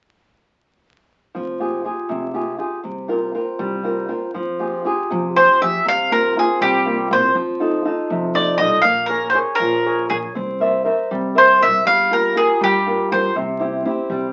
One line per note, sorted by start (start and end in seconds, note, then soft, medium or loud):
1.35 1.84 F1 medium
1.35 1.84 F3 soft
1.60 1.83 F4 soft
1.60 1.84 G4 soft
1.60 1.84 G#4 soft
1.84 2.25 F4 soft
1.84 2.25 G4 soft
1.84 2.25 G#4 soft
2.09 2.59 F1 medium
2.09 2.58 C3 medium
2.34 2.57 F4 soft
2.34 2.57 G4 soft
2.34 2.58 G#4 soft
2.58 2.78 F4 soft
2.58 2.78 G4 soft
2.58 2.79 G#4 soft
2.84 3.33 C2 medium
2.84 3.32 C3 medium
3.08 3.33 C4 soft
3.08 3.33 F4 soft
3.08 3.34 A#4 soft
3.35 3.75 C4 soft
3.35 3.74 F4 soft
3.35 3.75 A#4 soft
3.59 4.08 C2 medium
3.59 4.08 G3 medium
3.83 4.07 C4 soft
3.83 4.07 F4 soft
3.83 4.08 A#4 soft
4.08 4.29 C4 soft
4.08 4.29 F4 soft
4.08 4.29 A#4 soft
4.34 4.85 F2 medium
4.34 4.84 F3 medium
4.60 4.83 F4 soft
4.60 4.84 G4 soft
4.60 4.85 G#4 soft
4.85 5.25 F4 soft
4.85 5.26 G4 soft
4.85 5.26 G#4 soft
5.10 5.60 C3 medium
5.10 5.44 F3 medium
5.36 5.60 F4 soft
5.36 5.60 G4 soft
5.36 5.60 G#4 soft
5.36 5.60 C5 medium
5.61 5.78 F3 medium
5.61 5.81 F4 soft
5.61 5.81 G4 soft
5.61 5.81 G#4 soft
5.61 5.85 E5 medium
5.85 6.35 C2 medium
5.85 6.34 C3 medium
5.85 6.11 F5 loud
6.10 6.35 A#3 soft
6.10 6.35 C4 soft
6.10 6.36 F4 soft
6.10 6.35 A#4 medium
6.36 6.76 A#3 soft
6.36 6.76 C4 soft
6.36 6.77 F4 medium
6.36 6.61 G#4 medium
6.61 7.12 C3 medium
6.61 7.09 G3 medium
6.61 7.08 G4 medium
6.86 7.09 A#3 soft
6.86 7.09 C4 soft
6.86 7.10 F4 soft
7.10 7.27 C2 medium
7.10 7.31 A#3 soft
7.10 7.30 C4 soft
7.10 7.31 F4 soft
7.10 7.35 C5 medium
7.35 7.84 F2 medium
7.35 7.84 F3 medium
7.60 7.84 D#4 soft
7.60 7.84 F4 soft
7.60 7.84 A4 soft
7.85 8.25 D#4 soft
7.85 8.25 F4 soft
7.85 8.25 A4 soft
8.10 8.59 C3 medium
8.10 8.62 F3 medium
8.34 8.58 D#4 soft
8.34 8.58 F4 soft
8.34 8.59 A4 soft
8.34 8.57 D5 medium
8.58 8.76 C2 medium
8.58 8.79 D#4 soft
8.58 8.79 F4 soft
8.58 8.80 A4 soft
8.58 8.84 D#5 medium
8.82 9.34 A#1 medium
8.82 9.32 A#3 medium
8.82 9.06 F5 medium
9.06 9.33 G#4 soft
9.06 9.29 A#4 medium
9.06 9.34 A#4 soft
9.06 9.34 C#5 soft
9.30 9.37 C5 medium
9.34 9.75 G#4 soft
9.34 9.75 A#4 soft
9.34 9.76 C#5 medium
9.55 10.05 A#4 medium
9.59 10.12 A#2 medium
9.59 10.09 F3 medium
9.86 10.09 G#4 soft
9.86 10.09 A#4 soft
9.86 10.09 C#5 soft
10.10 10.27 A#1 medium
10.10 10.17 G#4 medium
10.10 10.31 G#4 soft
10.10 10.30 A#4 soft
10.10 10.31 C#5 soft
10.35 10.85 C2 medium
10.35 10.85 C4 medium
10.60 10.83 A#4 soft
10.60 10.84 C5 soft
10.60 10.85 E5 medium
10.85 11.26 A#4 soft
10.85 11.26 C5 soft
10.85 11.27 E5 soft
11.11 11.64 C3 medium
11.11 11.60 G3 medium
11.35 11.60 A#4 soft
11.35 11.60 C5 soft
11.35 11.61 C5 medium
11.35 11.61 E5 medium
11.61 11.79 C2 medium
11.61 11.81 A#4 soft
11.61 11.81 C5 soft
11.61 11.82 E5 soft
11.61 11.85 E5 medium
11.85 12.35 G1 medium
11.85 12.34 G3 medium
11.85 12.13 F5 loud
12.10 12.34 F4 soft
12.10 12.34 G4 soft
12.10 12.35 A#4 soft
12.10 12.36 A#4 medium
12.35 12.76 F4 soft
12.35 12.76 G4 soft
12.35 12.60 G#4 medium
12.35 12.76 A#4 medium
12.61 12.94 G2 medium
12.61 13.10 G3 medium
12.61 13.09 G4 medium
12.87 13.10 F4 soft
12.87 13.11 G4 soft
12.87 13.11 A#4 soft
13.11 13.28 G2 medium
13.11 13.31 F4 soft
13.11 13.31 G4 soft
13.11 13.32 A#4 soft
13.11 13.35 C5 medium
13.36 13.84 C2 medium
13.36 13.84 C3 medium
13.59 13.84 C4 soft
13.59 13.84 E4 soft
13.59 13.85 G4 medium
13.85 14.25 C4 soft
13.85 14.25 E4 soft
13.85 14.26 G4 medium
14.10 14.33 C3 medium
14.10 14.33 G3 medium